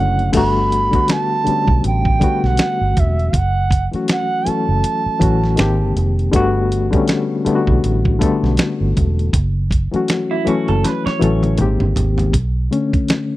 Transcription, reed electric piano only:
Already playing: D3 F#3 A3 C#4 E4
0.33 D3 G3 A3 B3
0.37 F#4
0.91 D3 G3 A3 B3
0.95 F#4
1.45 D3 G3 A3 B3
1.49 C#4
2.20 D3 G3 A3 B3
2.24 F#4
3.91 E3 F#3 A3 C#4
3.96 F#4
4.45 E3 F#3 A3 C#4
4.49 A4
5.19 E3 F#3 A3 C#4
5.23 F#4
5.56 D#3 G#3 A#3 C4
5.60 G4
6.31 D3 G3 A3 B3
6.36 F#4
6.91 D3 G3 A3 B3
6.95 C#4
7.45 D3 G3 A3 B3
7.49 E4
7.55 F#4
8.19 D3 G3 A3 B3
8.23 A4
9.91 E3 F#3 A3 C#4
9.96 F#4
10.45 E3 F#3 A3 C#4
10.49 E4
11.19 E3 F#3 A3 C#4
11.24 A4
11.57 D#3 G#3 A#3 C4
11.62 G4
12.71 D3 A3 C#4

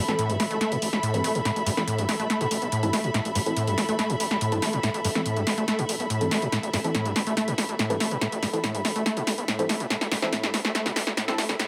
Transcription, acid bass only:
0.19 A2
0.29 G2
0.40 A3
0.51 A3
0.61 A3
0.72 A2
1.03 A2
1.14 G2
1.24 A3
1.35 A2
1.45 A2
1.66 G2
1.87 A2
1.98 G2
2.09 A3
2.20 A3
2.30 A3
2.41 A2
2.72 A2
2.83 G2
2.93 A3
3.04 A2
3.14 A2
3.35 G2
3.57 A2
3.67 G2
3.78 A3
3.89 A3
3.99 A3
4.10 A2
4.41 A2
4.52 G2
4.62 A3
4.73 A2
4.83 A2
5.05 G2
5.26 A2
5.37 G2
5.47 A3
5.58 A3
5.68 A3
5.79 A2
6.10 A2
6.21 G2
6.31 A3
6.42 A2
6.52 A2
6.74 G2
6.95 A2
7.06 G2
7.16 A3
7.27 A3
7.37 A3
7.48 A2
7.79 A2
7.90 G2
8.00 A3
8.11 A2
8.22 A2
8.43 G2
8.64 A2
8.75 G2
8.85 A3
8.96 A3
9.06 A3
9.17 A2
9.48 A2
9.59 G2
9.69 A3
9.80 A2
9.91 A2
10.12 G2
10.33 A2
10.44 G2
10.54 A3
10.65 A3
10.75 A3
10.86 A2
11.17 A2
11.28 G2
11.38 A3
11.49 A2
11.59 A2

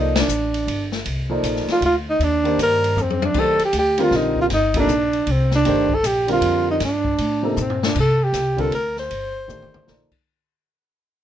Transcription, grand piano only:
Already playing: F3 A#3 D#4 A4 D5
1.30 F3 A#3 D#4 A4 D5
2.44 D#3 A#3 D4 G4 C5
3.34 D#3 A3 D4 G4 C5
3.98 D3 G3 C4 F4 A#4
4.75 C3 F3 A#3 D#4 A4
5.65 D#3 A3 D4 G4 C5
6.27 D3 G3 C4 F4 A#4
7.43 C3 F3 A#3 D#4 A4
8.56 D3 G3 C4 F4 A#4
9.48 D#3 A3 D4 G4 C5
9.86 F3 A#3 D#4 A4 D5

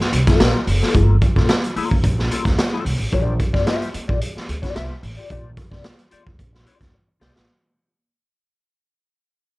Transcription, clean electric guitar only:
0.01 muted clean electric guitar stroke
0.27 A#3 F4 A4
0.40 A#3 F4 A#4
0.68 muted clean electric guitar stroke
0.82 A#3 F4 A4
0.94 A#3 F4 A4
1.22 muted clean electric guitar stroke
1.36 A#3 F4 A4
1.64 muted clean electric guitar stroke
1.76 A#3 F4 A4
1.91 muted clean electric guitar stroke
2.18 muted clean electric guitar stroke
2.31 A#3 F4 A4
2.46 muted clean electric guitar stroke
2.59 muted clean electric guitar stroke
2.72 A#3 F4 A4
2.85 muted clean electric guitar stroke
2.99 muted clean electric guitar stroke
3.12 F4 G4 D5
3.39 muted clean electric guitar stroke
3.53 F4 G4 D5
3.66 F4 G4 E5
3.93 muted clean electric guitar stroke
4.08 F4 G4 D5
4.36 muted clean electric guitar stroke
4.62 F4 G4 D5
4.75 F4 G4 E5
5.03 muted clean electric guitar stroke
5.17 F4 G4 D5
5.30 F4 G4 D5
5.57 muted clean electric guitar stroke
5.71 F4 G4 D5
5.98 muted clean electric guitar stroke
6.11 F4 G4 D5
6.26 muted clean electric guitar stroke
6.53 muted clean electric guitar stroke
6.66 F4 G4 D5
6.80 muted clean electric guitar stroke
6.93 muted clean electric guitar stroke
7.08 muted clean electric guitar stroke
7.20 F4 G4 D5
7.35 muted clean electric guitar stroke

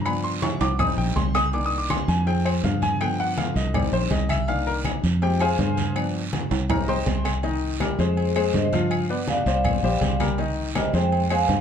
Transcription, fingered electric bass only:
Already playing: G2
0.61 C2
0.98 A#1
1.16 C2
2.08 F2
2.63 G2
3.56 C2
3.92 A#1
4.11 C2
5.03 F2
5.59 G2
6.51 C2
7.07 C2
7.99 F2
8.54 G2
9.46 C2
9.83 A#1
10.01 C2
10.93 F2
11.49 G2

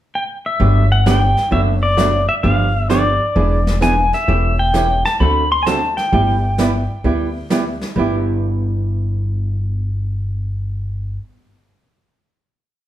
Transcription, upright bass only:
0.60 G1
1.52 F#1
2.44 G1
3.36 E1
4.28 E1
5.20 D2
6.13 G1
7.04 D2
7.96 G1

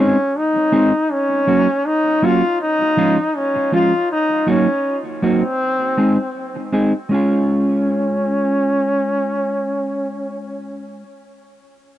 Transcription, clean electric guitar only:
Already playing: G#3 C4 D#4 G#4
0.56 muted clean electric guitar stroke
0.72 G#3 C4 D#4 G#4
1.47 F#3 A#3 C#4 F#4
2.22 F#3 A#3 C#4 F#4
2.81 muted clean electric guitar stroke
2.97 F3 G#3 C#4 F4
3.56 muted clean electric guitar stroke
3.72 F3 G#3 C#4 F4
4.47 F#3 A#3 D#4 F#4
5.22 F#3 A#3 D#4 F#4
5.97 G#3 C4 D#4 G#4
6.56 muted clean electric guitar stroke
6.72 G#3 C4 D#4 G#4
7.09 G#3 C#4 F4
7.14 G#4

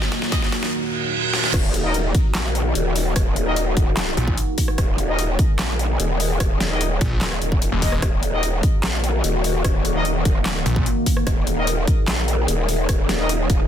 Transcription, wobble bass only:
1.54 D#1
2.35 A#1
2.75 D#1
3.16 D#1
3.77 D#1
4.78 D#1
5.59 A#1
6.00 D#1
6.40 D#1
7.21 D#1
7.42 D#1
8.02 D#1
8.84 A#1
9.24 D#1
9.65 D#1
10.25 D#1
11.27 D#1
12.08 A#1
12.48 D#1
12.89 D#1
13.50 D#1

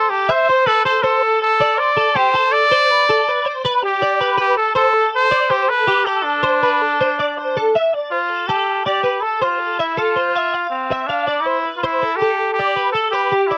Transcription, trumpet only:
Already playing: A4
0.10 G4
0.31 C5
0.67 A4
0.85 C5
1.03 A4
1.42 A4
1.79 D5
2.16 C5
2.52 D5
3.85 G4
4.40 G4
4.57 A4
4.76 A4
5.15 C5
5.51 G4
5.69 B4
6.06 G4
6.24 D4
8.11 F4
8.47 G4
8.85 G4
9.21 A4
9.43 F4
9.80 E4
9.99 F4
10.70 C4
11.07 D4
11.41 E4
11.77 F4
11.84 E4
12.16 G4
12.54 G4
12.92 A4
13.11 G4
13.47 E4

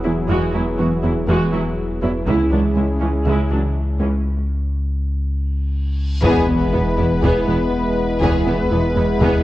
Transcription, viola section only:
0.03 F#3 E4
0.29 G#3 F#4
0.54 F#3 E4
0.78 G#3 F#4
1.03 F#3 E4
1.28 G#3 F#4
1.53 F#3 E4
2.02 F#3 E4
2.27 G#3 E4
2.52 F#3 D4
2.76 G#3 E4
3.00 E3 C#4
3.26 G#3 E4
3.50 F#3 D4
4.00 E3 C#4
6.24 B3
6.49 B3
6.73 B3
6.98 B3
7.23 B3
7.48 B3
8.22 B3
8.47 B3
8.72 B3
8.96 B3
9.21 B3

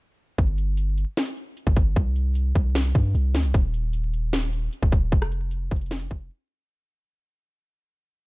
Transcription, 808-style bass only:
0.38 G1
1.67 G1
1.76 G1
1.96 C2
2.55 C2
2.95 G2
3.15 C2
3.34 D2
3.44 C2
3.54 D#1
4.83 D#1
4.92 D#1
5.12 F1
5.71 F1
6.11 F1

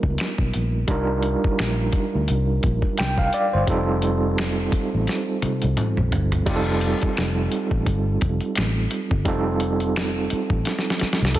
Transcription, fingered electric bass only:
0.04 C#2
0.39 B1
0.55 A#1
0.89 C2
1.45 muted fingered electric bass stroke
1.60 A#1
2.15 D2
2.30 C2
2.65 A#1
3.00 C2
3.54 G1
3.68 F1
4.73 muted fingered electric bass stroke
4.94 A1
5.44 muted fingered electric bass stroke
5.64 C2
5.99 A#1
6.14 G1
6.48 F1
7.04 muted fingered electric bass stroke
7.18 F1
7.72 A1
7.87 G1
8.23 F1
8.58 A1
9.12 G1
9.27 F1
10.32 muted fingered electric bass stroke
10.51 A1
11.02 muted fingered electric bass stroke
11.22 C2

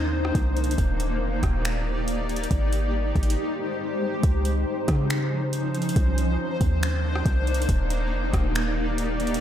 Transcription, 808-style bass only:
Already playing: D#2
0.35 C2
0.78 D#1
1.21 F1
1.43 D#1
2.51 G#1
3.16 G#1
4.24 C#2
4.88 C#3
5.96 C2
6.61 D#2
7.26 C2
7.69 D#1
8.12 F1
8.33 D#1

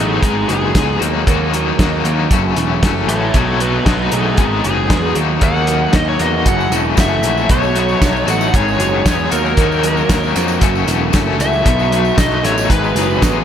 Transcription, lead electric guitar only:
Already playing: D#4 G#4
0.23 D#4 G#4
0.49 G#4
3.09 A4 C#5
3.35 A4 C#5
3.60 F#4 B4
3.85 F#4 B4
4.13 D#4 G#4
4.40 D#4 G#4
4.65 G#4
5.44 F#5
5.96 D#5
6.09 C#5
6.22 D#5
6.47 F#5
7.01 E5
7.51 C#5
8.30 F#5
8.56 C#5
9.09 C#5
9.32 A#4
11.41 E5
12.18 D#5
12.45 C#5
12.70 B4

